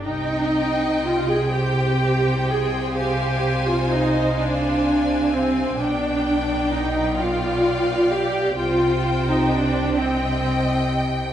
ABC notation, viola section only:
X:1
M:6/8
L:1/16
Q:3/8=43
K:Cm
V:1 name="Viola section"
E4 F A G4 A2 | G3 F E2 D4 C2 | D4 E2 F4 G2 | F3 E D2 C4 z2 |]